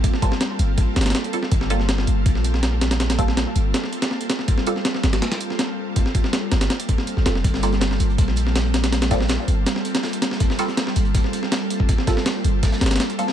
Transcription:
<<
  \new Staff \with { instrumentName = "Ambient pad" } { \time 4/4 \key g \minor \tempo 4 = 162 <g bes c' f' a'>4. <g bes c' f' a'>2~ <g bes c' f' a'>8 | <g bes c' f' a'>4. <g bes c' f' a'>2~ <g bes c' f' a'>8 | <g bes c' f' a'>4. <g bes c' f' a'>2~ <g bes c' f' a'>8 | <g bes c' f' a'>4. <g bes c' f' a'>2~ <g bes c' f' a'>8 |
<g bes c' f' a'>4. <g bes c' f' a'>2~ <g bes c' f' a'>8 | <g bes c' f' a'>4. <g bes c' f' a'>2~ <g bes c' f' a'>8 | <g bes c' f' a'>4. <g bes c' f' a'>2~ <g bes c' f' a'>8 | <g bes c' f' a'>4. <g bes c' f' a'>2~ <g bes c' f' a'>8 |
<g bes c' f' a'>4. <g bes c' f' a'>2~ <g bes c' f' a'>8 | }
  \new Staff \with { instrumentName = "Synth stab" } { \time 4/4 \key g \minor r8 <g bes c' f' a'>8 r2 r8 <g bes c' f' a'>8 | r8 <g bes c' f' a'>8 r2. | r8 <g bes c' f' a'>8 r2. | r8 <g bes c' f' a'>8 r2. |
r2. r8 <g bes c' f' a'>8 | r8 <g bes c' f' a'>8 r2. | r8 <g bes c' f' a'>8 r2. | r8 <g bes c' f' a'>8 r2. |
r8 <g bes c' f' a'>8 r2 r8 <g bes c' f' a'>8 | }
  \new Staff \with { instrumentName = "808-style bass" } { \clef bass \time 4/4 \key g \minor r4. g,,8 r8 g,,8 r4 | g,,4. g,,8 bes,,2~ | bes,,4~ bes,,16 r16 g,,8 r2 | r4. g,,8 r2 |
r4. g,,8 r4 r16 g,,16 f,,8 | g,,4. g,,8 bes,,2~ | bes,,4~ bes,,16 r16 g,,8 r2 | r4. g,,8 r2 |
r4. g,,8 r8 g,,8 r4 | }
  \new DrumStaff \with { instrumentName = "Drums" } \drummode { \time 4/4 <hh bd>16 sn16 <hh bd>16 sn16 <hh sn>8 hh8 <hh bd>8 <hh sn>32 <hh sn>32 <hh sn>32 <hh sn>32 <hh sn>16 hh16 hh16 sn16 | <hh bd>16 sn16 hh16 sn16 <hh sn>16 sn16 hh8 <hh bd>16 sn16 hh16 sn16 <hh sn>8 <hh sn>16 <hh sn>16 | <hh sn>16 <hh sn>16 <hh bd>16 sn16 <hh sn>8 hh8 <hh sn>16 sn16 hh16 <hh sn>16 sn16 hh16 <hh sn>16 sn16 | <hh bd>16 sn16 hh16 sn16 <hh sn>16 sn16 <hh sn>16 <hh sn>16 <hh sn>16 <hh sn>16 hh16 sn16 <hh sn>4 |
<hh bd>16 sn16 <hh bd>16 sn16 <hh sn>8 <hh sn>16 <hh sn>16 <hh sn>16 hh16 <hh bd>16 sn16 hh16 sn16 <hh sn>16 sn16 | <hh bd>16 sn16 <hh sn>16 <hh sn>16 <hh sn>16 sn16 hh16 hh16 <hh bd>16 sn16 hh16 sn16 <hh sn>8 <hh sn>16 <hh sn>16 | <hh sn>16 <hh sn>16 <hh bd sn>16 sn16 <hh sn>8 hh8 <hh sn>16 sn16 hh16 <hh sn>16 <hh sn>16 hh16 <hh sn>16 sn16 | <hh bd>16 sn16 <hh sn>16 <hh sn>16 <hh sn>16 sn16 hh16 hh16 <hh bd>16 sn16 hh16 sn16 <hh sn>8 hh16 bd16 |
<hh bd>16 sn16 <hh bd sn>16 sn16 <hh sn>8 hh8 <hh bd sn>16 <hh sn>16 <hh sn>32 <hh sn>32 <hh sn>32 <hh sn>32 <hh sn>16 hh16 hh16 sn16 | }
>>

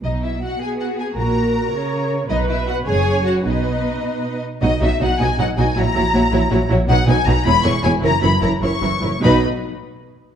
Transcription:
<<
  \new Staff \with { instrumentName = "Violin section" } { \time 6/8 \key b \major \tempo 4. = 105 dis''8 e''8 fis''8 gis''8 fis''8 gis''8 | ais''2~ ais''8 r8 | dis''8 e''8 fis''8 gis''4 fis''8 | dis''2~ dis''8 r8 |
dis''8 e''8 fis''8 gis''8 fis''8 gis''8 | ais''2~ ais''8 r8 | fis''8 gis''8 ais''8 b''8 cis'''8 gis''8 | ais''8 b''8 ais''8 cis'''4. |
b''8 r2 r8 | }
  \new Staff \with { instrumentName = "Violin section" } { \time 6/8 \key b \major dis'8 e'8 fis'8 gis'8 fis'8 gis'8 | ais'2~ ais'8 r8 | dis'8 e'8 fis'8 gis'4 fis'8 | dis'2~ dis'8 r8 |
<fis' dis''>8 <fis' dis''>8 <fis' dis''>8 <fis' dis''>8 <fis' dis''>8 <fis' dis''>8 | <fis' cis''>8 <fis' cis''>8 <fis' cis''>8 <fis' cis''>8 <fis' cis''>8 <fis' cis''>8 | <fis' b'>8 <fis' b'>8 <fis' b'>8 <gis' cis''>8 <gis' cis''>8 <gis' cis''>8 | <ais' cis''>8 <ais' cis''>8 <ais' cis''>8 <ais' cis''>8 <ais' cis''>8 <ais' cis''>8 |
<b' dis''>8 r2 r8 | }
  \new Staff \with { instrumentName = "Viola section" } { \time 6/8 \key b \major r4. gis'4. | fis'4. cis''4. | b'4. cis''4. | b'2~ b'16 r8. |
<fis dis'>8 <fis dis'>8 <fis dis'>8 <fis dis'>8 <fis dis'>8 <fis dis'>8 | <fis e'>8 <fis e'>8 <fis e'>8 <fis e'>8 <fis e'>8 <fis e'>8 | <fis dis'>8 <fis dis'>8 <fis dis'>8 <e e'>8 <e e'>8 <e e'>8 | <e e'>8 <e e'>8 <e e'>8 <e e'>8 <e e'>8 <e e'>8 |
<fis dis'>8 r2 r8 | }
  \new Staff \with { instrumentName = "Cello section" } { \clef bass \time 6/8 \key b \major b,4. b4. | ais,4. cis4. | b,4. fis,4. | b,2~ b,8 r8 |
b,8 b,8 b,8 b,8 b,8 b,8 | ais,8 ais,8 ais,8 ais,8 ais,8 ais,8 | b,8 b,8 b,8 e,8 e,8 e,8 | fis,8 fis,8 fis,8 fis,8 fis,8 fis,8 |
b,8 r2 r8 | }
  \new Staff \with { instrumentName = "Double bass section" } { \clef bass \time 6/8 \key b \major b,,4 r2 | ais,,4 r2 | b,,4 r8 fis,,4 r8 | b,,4 r2 |
b,,8 b,,8 b,,8 b,,8 b,,8 b,,8 | ais,,8 ais,,8 ais,,8 ais,,8 ais,,8 ais,,8 | b,,8 b,,8 b,,8 e,,8 e,,8 e,,8 | fis,,8 fis,,8 fis,,8 fis,,8 fis,,8 fis,,8 |
b,,8 r2 r8 | }
>>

